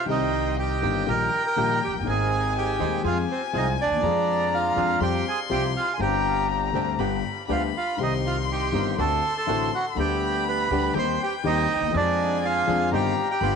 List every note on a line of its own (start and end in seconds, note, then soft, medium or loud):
0.05 0.77 C2 medium
0.05 0.78 C2 medium
0.05 0.78 C3 medium
0.05 0.77 D#3 medium
0.05 0.78 G3 medium
0.05 0.78 C4 medium
0.05 0.78 D#4 medium
0.05 0.78 G4 medium
0.05 0.79 G4 medium
0.05 0.59 G5 medium
0.10 0.55 D#4 medium
0.10 0.55 D#5 medium
0.57 1.04 G4 medium
0.57 1.09 D#5 medium
0.57 1.09 G5 medium
0.82 1.03 G1 medium
0.82 1.03 G2 medium
0.82 1.03 D#3 soft
0.82 1.03 G3 soft
0.82 1.03 C4 medium
0.82 1.03 C4 soft
0.82 1.03 D#4 medium
0.82 1.03 G4 medium
1.06 1.27 A#1 medium
1.06 1.27 A#2 medium
1.06 1.27 D#3 medium
1.06 1.27 G3 soft
1.06 1.27 A#3 medium
1.06 1.27 A#3 soft
1.06 1.27 D#4 medium
1.06 1.27 G4 medium
1.06 1.28 G4 medium
1.06 1.43 A#4 medium
1.06 2.08 G5 medium
1.06 1.46 A#5 medium
1.46 1.80 A#4 medium
1.46 1.83 A#5 medium
1.56 1.77 A#1 medium
1.56 1.77 A#2 medium
1.56 1.77 D#3 medium
1.56 1.77 G3 medium
1.56 1.77 A#3 medium
1.56 1.77 D#4 medium
1.56 1.77 G4 medium
1.84 1.93 F1 soft
1.84 1.94 G4 medium
1.84 1.94 G5 medium
1.88 1.94 F1 soft
1.93 1.99 F#1 soft
2.00 2.06 G1 medium
2.00 2.75 D#3 medium
2.05 2.76 G#1 medium
2.05 2.76 G#2 medium
2.05 2.75 G#3 soft
2.05 2.76 C4 medium
2.05 2.76 D#4 medium
2.05 2.76 G#4 medium
2.05 2.77 G#4 medium
2.05 3.04 G#5 medium
2.09 2.53 G#4 medium
2.09 2.53 G#5 medium
2.58 3.02 G4 medium
2.58 3.02 G5 medium
2.79 3.00 D#1 medium
2.79 3.00 D#2 medium
2.79 3.00 D#3 medium
2.79 3.00 G#3 medium
2.79 3.00 C4 medium
2.79 3.00 C4 soft
2.79 3.00 D#4 medium
2.79 3.00 G#4 medium
3.03 3.25 F2 medium
3.03 3.24 F3 medium
3.03 3.25 G#3 medium
3.03 3.24 C4 medium
3.03 3.25 C4 medium
3.03 3.25 F4 medium
3.03 3.25 G#4 medium
3.03 3.18 F5 medium
3.03 4.04 G#5 medium
3.08 3.18 F4 medium
3.31 3.42 C4 soft
3.31 3.42 C5 medium
3.53 3.74 C2 medium
3.53 3.74 C3 medium
3.53 3.74 F3 medium
3.53 3.74 G#3 medium
3.53 3.74 C4 medium
3.53 3.74 F4 medium
3.53 3.74 G#4 medium
3.57 3.68 D#4 medium
3.57 3.67 D#5 medium
3.81 3.90 D2 soft
3.81 4.50 D4 medium
3.81 4.56 D5 medium
3.90 3.96 D#2 soft
3.90 3.97 D#2 soft
3.97 4.03 E2 medium
3.97 4.02 E2 medium
4.02 4.73 F2 medium
4.02 4.73 F3 medium
4.02 4.73 G#3 medium
4.02 4.73 D4 medium
4.02 4.73 F4 medium
4.02 4.73 G#4 medium
4.02 4.74 G#4 medium
4.02 5.02 A#5 medium
4.54 4.99 F4 medium
4.54 4.99 F5 medium
4.76 4.97 F2 medium
4.76 4.97 F3 medium
4.76 4.97 G#3 medium
4.76 4.97 D4 medium
4.76 4.97 D4 soft
4.76 4.97 F4 medium
4.76 4.97 G#4 medium
5.00 5.21 F2 medium
5.00 5.22 F2 medium
5.00 5.22 F3 medium
5.00 5.22 G3 medium
5.00 5.22 C4 medium
5.00 5.22 F4 medium
5.00 5.22 G4 medium
5.00 5.26 G4 medium
5.00 5.25 G5 medium
5.00 6.02 C6 medium
5.28 5.40 G#4 medium
5.28 5.39 G#5 medium
5.49 5.71 C2 medium
5.49 5.71 C3 medium
5.49 5.71 F3 medium
5.49 5.71 G3 medium
5.49 5.71 C4 medium
5.49 5.71 F4 medium
5.49 5.71 G4 medium
5.49 5.63 G4 medium
5.49 5.63 G5 medium
5.77 5.93 F4 soft
5.77 5.94 F5 medium
5.94 6.69 D3 medium
5.94 6.00 G#5 soft
5.99 6.70 G1 medium
5.99 6.70 G2 medium
5.99 6.70 G3 medium
5.99 6.70 C4 medium
5.99 6.71 C4 medium
5.99 6.70 D4 medium
5.99 6.71 G4 medium
5.99 6.72 G4 medium
5.99 6.47 G4 soft
5.99 6.47 G5 medium
5.99 7.00 A#5 medium
6.73 6.95 D2 medium
6.73 6.95 D3 medium
6.73 6.95 G3 soft
6.73 6.95 C4 soft
6.73 6.95 C4 medium
6.73 6.95 D4 medium
6.73 6.95 G4 medium
6.99 7.20 G1 medium
6.99 7.20 G2 medium
6.99 7.20 D3 medium
6.99 7.20 G3 medium
6.99 7.20 B3 medium
6.99 7.20 B3 soft
6.99 7.20 D4 medium
6.99 7.20 G4 medium
6.99 7.47 B5 medium
7.48 7.70 D2 medium
7.48 7.70 D3 medium
7.48 7.70 G3 medium
7.48 7.70 B3 medium
7.48 7.70 D4 medium
7.48 7.62 F4 soft
7.48 7.70 G4 medium
7.48 8.00 B5 medium
7.52 7.63 F5 medium
7.77 7.99 F4 soft
7.77 8.00 F5 medium
7.97 8.69 C2 medium
7.97 8.70 C2 medium
7.97 8.70 C3 medium
7.97 8.69 D#3 medium
7.97 8.69 G3 medium
7.97 8.69 C4 medium
7.97 8.70 C4 soft
7.97 8.70 D#4 medium
7.97 8.70 G4 medium
7.97 8.97 C6 medium
8.02 8.13 D#4 soft
8.02 8.14 D#5 medium
8.26 8.37 F4 soft
8.26 8.38 F5 medium
8.51 8.96 G4 medium
8.51 8.97 G5 medium
8.72 8.94 G1 medium
8.72 8.94 G2 medium
8.72 8.94 D#3 medium
8.72 8.94 G3 soft
8.72 8.94 C4 soft
8.72 8.94 C4 medium
8.72 8.94 D#4 medium
8.72 8.94 G4 medium
8.97 9.19 D2 medium
8.97 9.19 D3 medium
8.97 9.19 A3 medium
8.97 9.19 C4 medium
8.97 9.19 D4 medium
8.97 9.19 F#4 medium
8.97 9.34 A4 medium
8.97 9.36 A5 medium
8.97 9.98 C6 medium
9.38 9.71 A4 medium
9.38 9.71 A5 medium
9.47 9.68 A1 medium
9.47 9.68 A2 medium
9.47 9.68 D3 medium
9.47 9.68 A3 medium
9.47 9.68 C4 medium
9.47 9.68 D4 medium
9.47 9.68 F#4 medium
9.75 9.85 F#4 medium
9.75 9.85 F#5 medium
9.95 10.67 D2 medium
9.95 9.96 D3 medium
9.95 10.67 D3 medium
9.95 10.67 G3 medium
9.95 10.67 B3 medium
9.95 10.68 B3 soft
9.95 10.67 D4 medium
9.95 10.67 G4 medium
9.95 10.96 B5 medium
9.99 10.68 G4 medium
9.99 10.44 G4 medium
9.99 10.44 G5 medium
10.49 10.93 B4 medium
10.49 10.93 B5 medium
10.70 10.91 D2 medium
10.70 10.92 D2 medium
10.70 10.92 D3 medium
10.70 10.92 G3 medium
10.70 10.92 B3 medium
10.70 10.92 B3 soft
10.70 10.92 D4 medium
10.70 10.92 G4 medium
10.94 11.16 D#2 medium
10.94 11.16 D#3 medium
10.94 11.16 G3 medium
10.94 11.16 C4 medium
10.94 11.16 D#4 medium
10.94 11.16 G4 medium
10.94 11.95 G5 medium
10.99 11.20 C5 medium
10.99 11.22 C6 medium
11.23 11.34 G4 medium
11.23 11.34 G5 medium
11.44 11.65 D#2 medium
11.44 11.65 D#3 medium
11.44 11.65 G3 medium
11.44 11.65 C4 medium
11.44 11.65 D#4 medium
11.44 11.92 D#4 medium
11.44 11.65 G4 medium
11.44 11.66 G4 medium
11.44 11.96 D#5 medium
11.75 11.81 D2 soft
11.75 11.82 D2 soft
11.80 11.87 D#2 medium
11.80 11.88 D#2 medium
11.87 11.93 E2 medium
11.87 11.94 E2 medium
11.91 12.64 F2 medium
11.91 11.92 F3 medium
11.91 12.64 F3 medium
11.91 12.63 G#3 medium
11.91 12.64 D4 medium
11.91 12.64 F4 medium
11.91 12.64 G#4 medium
11.91 12.93 G#5 medium
11.95 12.41 D4 medium
11.95 12.65 G#4 medium
11.95 12.46 D5 medium
12.45 12.90 F4 medium
12.45 12.90 F5 medium
12.67 12.88 F2 medium
12.67 12.88 F3 medium
12.67 12.88 G#3 medium
12.67 12.88 D4 medium
12.67 12.89 D4 medium
12.67 12.88 F4 medium
12.67 12.89 G#4 medium
12.91 13.13 G1 medium
12.91 13.13 G2 medium
12.91 13.13 D#3 medium
12.91 13.13 G3 medium
12.91 13.13 C4 medium
12.91 13.13 D#4 medium
12.91 13.13 G4 medium
12.91 13.14 G4 medium
12.91 13.28 G4 medium
12.91 13.28 G5 medium
12.91 13.42 A#5 medium
13.31 13.55 G4 medium
13.31 13.55 G5 medium
13.41 13.55 G1 medium
13.41 13.55 G2 medium
13.41 13.55 D3 medium
13.41 13.55 G3 medium
13.41 13.55 B3 medium
13.41 13.55 F4 medium
13.41 13.55 G4 medium
13.41 13.55 B5 medium